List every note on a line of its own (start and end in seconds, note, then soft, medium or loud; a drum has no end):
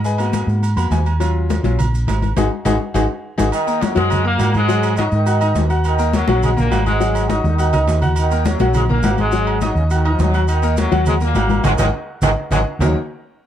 0.00 0.42 G#2 medium
0.04 0.45 G#4 medium
0.04 0.45 B4 medium
0.04 0.45 D#5 medium
0.04 0.45 G#5 medium
0.04 high conga soft
0.04 maracas medium
0.18 0.60 A#3 medium
0.18 0.60 B3 medium
0.18 0.61 F#4 medium
0.18 high conga soft
0.18 low agogo loud
0.18 maracas medium
0.33 high conga loud
0.33 low timbale medium
0.33 low agogo medium
0.33 maracas medium
0.47 0.74 G#2 loud
0.47 high conga soft
0.47 maracas soft
0.62 high conga soft
0.62 low agogo medium
0.62 maracas medium
0.76 0.90 F2 medium
0.76 0.90 A#3 medium
0.76 0.90 B3 soft
0.76 0.90 F#4 medium
0.76 0.91 B5 medium
0.76 high conga soft
0.76 low agogo loud
0.76 maracas medium
0.90 1.58 D#2 medium
0.90 1.18 G#5 medium
0.90 high conga medium
0.90 low timbale medium
0.90 maracas medium
1.06 high conga soft
1.06 low agogo loud
1.06 maracas soft
1.20 1.62 F#3 medium
1.20 1.63 C#4 soft
1.20 1.63 F4 medium
1.20 high conga soft
1.20 low agogo loud
1.20 maracas medium
1.36 high conga soft
1.50 high conga loud
1.50 low timbale medium
1.50 low agogo medium
1.50 maracas medium
1.63 2.04 A#1 loud
1.63 1.77 F#3 medium
1.63 1.77 C#4 soft
1.63 1.77 F4 medium
1.63 high conga loud
1.63 low agogo medium
1.63 maracas soft
1.79 high conga soft
1.79 low conga medium
1.79 low agogo loud
1.79 maracas medium
1.94 high conga soft
1.94 maracas medium
2.07 2.34 G#1 loud
2.07 high conga medium
2.07 low timbale medium
2.07 low agogo loud
2.07 maracas medium
2.22 high conga medium
2.22 low agogo medium
2.22 maracas soft
2.36 2.47 G#1 medium
2.36 2.46 D#4 medium
2.36 2.46 F#4 loud
2.36 2.46 G#4 loud
2.36 high conga loud
2.36 high timbale loud
2.36 maracas loud
2.65 2.76 G#1 loud
2.65 2.75 D#4 loud
2.65 2.75 F#4 loud
2.65 2.75 G#4 loud
2.65 high conga loud
2.65 high timbale loud
2.65 maracas loud
2.94 3.05 G#1 loud
2.94 3.04 D#4 loud
2.94 3.04 F#4 loud
2.94 3.04 G#4 loud
2.94 high conga loud
2.94 high timbale loud
2.94 maracas loud
3.38 3.49 G#1 loud
3.38 3.47 D#4 loud
3.38 3.47 F#4 loud
3.38 3.47 G#4 loud
3.38 high conga loud
3.38 high timbale loud
3.38 maracas loud
3.52 3.79 D#3 loud
3.52 3.80 D#4 medium
3.52 high conga soft
3.52 low agogo loud
3.52 maracas medium
3.67 3.91 A#3 medium
3.67 3.91 A#4 medium
3.67 3.91 A#5 medium
3.67 high conga soft
3.67 maracas medium
3.81 3.97 F#2 medium
3.81 3.96 F#3 loud
3.81 high conga loud
3.81 low timbale medium
3.81 low agogo medium
3.81 maracas medium
3.95 4.37 F#2 loud
3.95 4.24 G#2 medium
3.95 4.19 F#3 loud
3.95 4.24 G#3 loud
3.95 4.20 F#4 medium
3.95 4.20 F#5 medium
3.95 high conga loud
3.95 low agogo medium
3.95 maracas soft
4.10 high conga soft
4.10 low conga medium
4.10 low agogo loud
4.10 maracas medium
4.24 4.53 A#2 medium
4.24 4.36 A#3 medium
4.24 4.53 A#3 loud
4.24 4.37 A#4 medium
4.24 4.37 A#5 medium
4.24 high conga soft
4.38 5.06 G#2 loud
4.38 4.62 F#4 medium
4.38 4.63 F#5 medium
4.38 4.63 F#6 medium
4.38 high conga medium
4.38 low timbale loud
4.38 low agogo loud
4.38 maracas medium
4.54 4.95 G#2 loud
4.54 4.94 G#3 loud
4.54 high conga medium
4.54 low agogo medium
4.54 maracas soft
4.68 4.92 F#3 medium
4.68 4.92 F#4 medium
4.68 4.93 F#5 medium
4.68 high conga soft
4.68 maracas medium
4.83 high conga soft
4.83 low agogo loud
4.83 maracas medium
4.97 5.05 F#2 medium
4.97 5.04 F#3 loud
4.97 5.21 D#4 medium
4.97 5.22 D#5 medium
4.97 5.22 D#6 medium
4.97 high conga loud
4.97 low timbale medium
4.97 low agogo medium
4.97 maracas medium
5.12 5.52 G#2 loud
5.12 5.66 D#3 loud
5.12 5.67 D#4 medium
5.12 high conga soft
5.12 maracas soft
5.26 5.38 F#4 medium
5.26 5.38 F#5 medium
5.26 5.38 F#6 medium
5.26 high conga soft
5.26 low agogo medium
5.26 maracas medium
5.41 5.65 D#4 medium
5.41 5.65 D#5 medium
5.41 5.65 D#6 medium
5.41 high conga soft
5.41 low agogo loud
5.41 maracas medium
5.55 6.22 D#2 loud
5.55 high conga loud
5.55 low timbale medium
5.55 maracas medium
5.70 5.94 F#4 medium
5.70 5.94 F#5 medium
5.70 5.94 F#6 medium
5.70 high conga soft
5.70 low agogo medium
5.70 maracas soft
5.84 6.11 D#3 loud
5.84 6.12 D#4 medium
5.84 high conga soft
5.84 low agogo loud
5.84 maracas medium
5.98 6.23 A#3 medium
5.98 6.23 A#4 medium
5.98 6.23 A#5 medium
5.98 high conga soft
5.98 maracas medium
6.13 6.41 F#2 medium
6.13 6.41 F#3 loud
6.13 high conga loud
6.13 low timbale medium
6.13 low agogo medium
6.13 maracas medium
6.28 6.68 A#1 loud
6.28 6.52 F#3 loud
6.28 6.52 F#4 loud
6.28 6.52 F#5 loud
6.28 high conga loud
6.28 low agogo medium
6.28 maracas soft
6.43 6.50 G#2 medium
6.43 6.49 G#3 loud
6.43 high conga soft
6.43 low conga medium
6.43 low agogo loud
6.43 maracas medium
6.56 6.85 A#2 medium
6.56 6.69 A#3 medium
6.56 6.84 A#3 loud
6.56 6.69 A#4 medium
6.56 6.69 A#5 medium
6.56 high conga soft
6.56 low conga medium
6.56 maracas medium
6.71 7.39 G#1 loud
6.71 6.95 F#4 medium
6.71 6.95 F#5 medium
6.71 6.95 F#6 medium
6.71 high conga medium
6.71 low timbale medium
6.71 low agogo loud
6.71 maracas medium
6.86 7.27 G#2 medium
6.86 7.26 G#3 loud
6.86 high conga medium
6.86 low agogo medium
6.86 maracas soft
7.00 7.24 F#3 medium
7.00 7.24 F#4 medium
7.00 7.24 F#5 medium
7.00 high conga soft
7.00 maracas medium
7.15 high conga soft
7.15 low agogo loud
7.15 maracas medium
7.29 7.45 F#2 medium
7.29 7.44 F#3 medium
7.29 7.53 D#4 medium
7.29 7.53 D#5 medium
7.29 7.53 D#6 medium
7.29 high conga loud
7.29 low timbale medium
7.29 low agogo medium
7.29 maracas medium
7.44 7.71 D#2 loud
7.44 7.98 D#3 loud
7.44 7.99 D#4 medium
7.44 high conga medium
7.44 maracas soft
7.58 7.71 F#4 medium
7.58 7.71 F#5 medium
7.58 7.71 F#6 medium
7.58 low agogo medium
7.58 maracas medium
7.73 7.86 C#2 medium
7.73 7.97 D#4 medium
7.73 7.97 D#5 medium
7.73 7.97 D#6 medium
7.73 low conga medium
7.73 low agogo loud
7.73 maracas medium
7.87 8.54 D#2 loud
7.87 low timbale loud
7.87 maracas medium
8.02 8.25 F#4 medium
8.02 8.26 F#5 medium
8.02 8.26 F#6 medium
8.02 low conga loud
8.02 low agogo medium
8.02 maracas soft
8.16 8.43 D#3 loud
8.16 8.44 D#4 medium
8.16 high conga soft
8.16 low agogo loud
8.16 maracas medium
8.31 8.55 A#3 medium
8.31 8.55 A#4 medium
8.31 8.55 A#5 medium
8.31 high conga soft
8.31 maracas medium
8.45 8.75 F#2 medium
8.45 8.74 F#3 loud
8.45 high conga loud
8.45 low timbale medium
8.45 low agogo medium
8.45 maracas medium
8.59 9.00 A#1 loud
8.59 8.84 F#3 medium
8.59 8.84 F#4 loud
8.59 8.84 F#5 loud
8.59 high conga loud
8.59 low agogo medium
8.59 maracas soft
8.74 8.83 G#2 medium
8.74 8.82 G#3 medium
8.74 high conga soft
8.74 low conga medium
8.74 low agogo loud
8.74 maracas medium
8.89 9.17 A#2 medium
8.89 9.16 A#3 loud
8.89 9.01 A#3 medium
8.89 9.01 A#4 medium
8.89 9.01 A#5 medium
8.89 high conga soft
8.89 low conga medium
9.03 9.70 G#1 medium
9.03 9.27 F#4 medium
9.03 9.27 F#5 medium
9.03 9.27 F#6 medium
9.03 high conga medium
9.03 low timbale medium
9.03 low agogo loud
9.03 maracas medium
9.17 9.59 G#2 medium
9.17 9.58 G#3 loud
9.17 high conga medium
9.17 low agogo medium
9.17 maracas soft
9.32 9.56 F#3 medium
9.32 9.56 F#4 medium
9.32 9.56 F#5 medium
9.32 high conga soft
9.32 maracas medium
9.47 high conga soft
9.47 low agogo loud
9.61 9.75 F#2 medium
9.61 9.75 F#3 medium
9.61 9.86 D#4 medium
9.61 9.86 D#5 medium
9.61 9.86 D#6 medium
9.61 high conga loud
9.61 low timbale medium
9.61 low agogo medium
9.61 maracas medium
9.75 10.16 D#2 loud
9.75 9.82 C#3 medium
9.75 high conga soft
9.75 maracas soft
9.90 10.11 D#3 loud
9.90 10.02 F#4 medium
9.90 10.03 F#5 medium
9.90 10.03 F#6 medium
9.90 high conga soft
9.90 low agogo medium
9.90 maracas medium
10.05 10.29 D#4 medium
10.05 10.29 D#5 medium
10.05 10.29 D#6 medium
10.05 high conga soft
10.05 low agogo loud
10.12 10.19 F3 loud
10.19 10.86 D#2 medium
10.19 10.41 F#3 loud
10.19 high conga medium
10.19 low timbale medium
10.19 maracas medium
10.34 10.58 F#4 medium
10.34 10.58 F#5 medium
10.34 10.58 F#6 medium
10.34 high conga soft
10.34 low agogo medium
10.34 maracas soft
10.48 10.76 D#3 loud
10.48 10.75 D#4 medium
10.48 high conga soft
10.48 low agogo loud
10.48 maracas medium
10.62 10.86 A#3 medium
10.62 10.87 A#4 medium
10.62 10.87 A#5 medium
10.62 high conga soft
10.62 maracas medium
10.77 11.05 F#2 medium
10.77 11.05 F#3 loud
10.77 high conga loud
10.77 low timbale medium
10.77 low agogo medium
10.77 maracas medium
10.91 11.32 D#2 loud
10.91 11.15 F#3 medium
10.91 11.16 F#4 loud
10.91 11.16 F#5 loud
10.91 high conga loud
10.91 low agogo medium
10.91 maracas soft
11.06 11.13 G#2 medium
11.06 11.13 G#3 loud
11.06 high conga soft
11.06 low conga medium
11.06 low agogo loud
11.06 maracas medium
11.20 11.62 A#2 medium
11.20 11.33 A#3 medium
11.20 11.62 A#3 loud
11.20 11.33 A#4 medium
11.20 11.33 A#5 medium
11.20 high conga soft
11.20 maracas medium
11.34 11.62 G#1 medium
11.34 11.59 F#4 medium
11.34 11.59 F#5 medium
11.34 11.59 F#6 medium
11.34 high conga medium
11.34 low timbale medium
11.34 low agogo loud
11.34 maracas medium
11.49 high conga loud
11.49 low agogo medium
11.49 maracas soft
11.63 11.75 G#1 loud
11.63 11.71 D#3 loud
11.63 11.71 F#3 loud
11.63 11.71 G#3 loud
11.63 11.73 D#5 loud
11.63 11.73 F#5 medium
11.63 11.73 G#5 medium
11.63 low conga loud
11.63 high timbale loud
11.63 maracas loud
11.78 11.89 G#1 loud
11.78 11.85 D#3 loud
11.78 11.87 D#3 loud
11.78 11.85 F#3 loud
11.78 11.87 F#3 medium
11.78 11.86 G#3 loud
11.78 11.87 G#3 loud
11.78 11.88 D#5 loud
11.78 11.88 F#5 loud
11.78 11.88 G#5 loud
11.78 low conga loud
11.78 high timbale loud
11.78 maracas loud
12.22 12.33 G#1 medium
12.22 12.29 D#3 loud
12.22 12.30 D#3 loud
12.22 12.29 F#3 loud
12.22 12.30 F#3 loud
12.22 12.29 G#3 loud
12.22 12.30 G#3 medium
12.22 12.32 D#5 loud
12.22 12.32 F#5 medium
12.22 12.32 G#5 loud
12.22 low conga loud
12.22 high timbale loud
12.22 maracas loud
12.51 12.62 G#1 loud
12.51 12.58 D#3 loud
12.51 12.59 D#3 loud
12.51 12.59 F#3 loud
12.51 12.58 G#3 loud
12.51 12.59 G#3 loud
12.51 12.61 D#5 loud
12.51 12.61 F#5 medium
12.51 12.61 G#5 loud
12.51 low conga loud
12.51 high timbale loud
12.51 maracas loud
12.79 12.93 D#2 loud
12.79 12.94 D#3 medium
12.79 12.94 F#3 medium
12.79 12.94 A#3 medium
12.79 12.94 C#4 medium
12.79 12.94 D#4 medium
12.79 12.95 F#4 medium
12.79 12.95 A#4 loud
12.79 low conga loud
12.79 low timbale loud
12.79 maracas loud